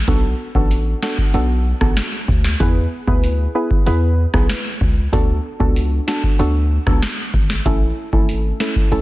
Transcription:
0.08 B1 B3 D4 F#4 A4, kick, closed hi-hat
0.55 A1 B3 D4 F#4 A4, kick
0.71 closed hi-hat
1.02 B3 D4 F#4 A4, snare
1.18 kick
1.34 B1 B3 D4 F#4 A4, closed hi-hat
1.81 A1 B3 D4 F#4 A4, kick, cross-stick
1.97 snare, closed hi-hat
2.28 D2, kick
2.44 snare
2.60 E2 B3 E4 G#4 B4, kick, closed hi-hat
3.07 D2 B3 E4 G#4 B4, kick
3.24 closed hi-hat
3.55 B3 E4 G#4 B4
3.71 kick
3.86 E2 B3 E4 G#4 B4, closed hi-hat
4.34 B1 B3 E4 G#4 B4, kick, cross-stick
4.50 snare, closed hi-hat
4.81 C#2, kick
5.12 D2 B3 D4 F#4 A4, kick, closed hi-hat
5.60 C#2 B3 D4 F#4 A4, kick
5.76 closed hi-hat
6.07 B3 D4 F#4 A4, snare
6.24 kick
6.39 D2 B3 D4 F#4 A4, closed hi-hat
6.86 C#2 B3 D4 F#4 A4, kick, cross-stick
7.02 snare, closed hi-hat
7.34 G#1, kick
7.50 snare
7.65 A1 A3 C#4 E4 A4, kick, closed hi-hat
8.13 G#1 A3 C#4 E4 A4, kick
8.29 closed hi-hat
8.60 A3 C#4 E4 A4, snare
8.76 kick
8.91 A1 A3 C#4 E4 A4, closed hi-hat

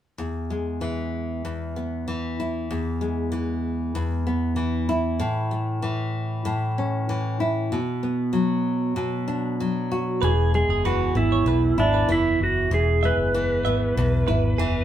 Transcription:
0.18 E2
0.50 G#3
0.81 E3
1.45 E2
1.76 B3
2.08 E3
2.40 E4
2.71 E2
3.01 G#3
3.32 E3
3.95 E2
4.27 B3
4.56 E3
4.89 E4
5.20 A2
5.51 A3
5.82 E3
6.45 A2
6.78 C#4
7.09 E3
7.40 E4
7.72 B2
8.03 B3
8.33 F#3
8.96 B2
9.28 D4
9.60 F#3
9.92 F#4
10.22 E1 E2 G#4 B4
10.54 G#3 G#4
10.69 F#1 G#4
10.85 E3 F#4 B4
11.15 G#1 B3 E4
11.32 C#5
11.46 B1 E2 B4
11.77 G#1 D4 E4
11.94 B4
12.09 F#1 E3 E4
12.40 F#1 F#4
12.71 E1 E2 G#4
13.03 G#3 B4 E5
13.17 F#1
13.34 E3
13.65 G#1 B3 E5
13.97 B1 E2
14.28 G#1 E4 B4
14.58 F#1 E3 G#4

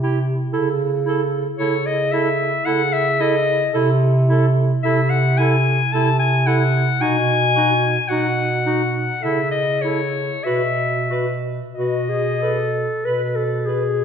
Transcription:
Already playing: C3
0.03 E4 G4
0.53 C#3 E4 A4
1.05 E4 A4
1.59 C#3 E4 A4 C#5
1.86 D#5
2.12 E4 A4 E5
2.65 C#3 E4 A4 F#5
2.93 E5
3.20 E4 A4 D#5
3.74 C3 E4 A4
4.29 E4 A4
4.83 C3 E4 A4 E5
5.10 F#5
5.38 E4 A4 G#5
5.93 C3 E4 A4 A5
6.20 G#5
6.47 E4 A4 F#5
7.00 B2 D#4 F#4 G#5
7.55 D#4 F#4
8.08 B2 D#4 F#4 F#5
8.66 D#4 F#4
9.23 C#3 E4 A4 E5
9.51 D#5
9.81 E4 A4 C#5
10.44 B2 F#4 B4 E5
11.10 F#4 B4
11.75 B2 F#4 D#5
11.79 B4
12.09 G#4
12.42 A4 B4
13.04 B2 B4
13.35 A4
13.66 G#4 B4

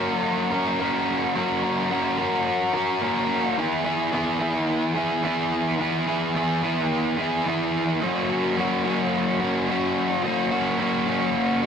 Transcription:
Already playing: F#3 A#3 F#4 A#4
0.00 C#4
0.51 C#4 F#4 A#4
0.79 A#3 C#4 F#4 A#4
1.35 F#3 A#3 C#4 F#4 A#4
1.63 C#4 F#4 A#4
1.90 A#3 C#4 F#4 A#4
2.18 C#4 F#4 A#4
2.74 C#4 F#4 A#4
3.01 A#3 C#4 F#4 A#4
3.57 E3 B3 E4 G#4
3.85 B3 E4 G#4
4.12 E3 B3 E4 G#4
4.39 B3 E4 G#4
4.95 B3 E4 G#4
5.23 E3 B3 E4 G#4
5.79 E3 B3 E4 G#4
6.07 B3 E4 G#4
6.34 E3 B3 E4 G#4
6.63 B3 E4 G#4
7.17 B3 E4 G#4
7.46 E3 B3 E4 G#4
8.01 F#3 A#3 C#4 F#4
8.29 A#3 C#4 F#4
8.57 F#3 A#3 C#4 F#4
8.84 A#3 C#4 F#4
9.40 A#3 C#4 F#4
9.67 F#3 A#3 C#4 F#4
10.23 F#3 A#3 C#4 F#4
10.51 A#3 C#4 F#4
10.78 F#3 A#3 C#4 F#4
11.07 A#3 C#4 F#4
11.62 F#4

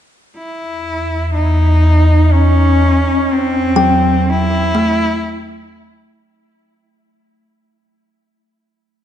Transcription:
0.34 E2 E4
1.34 D#4
2.32 C#4
3.29 E2 C4
3.76 F#3 G5
4.29 E4
4.75 A3

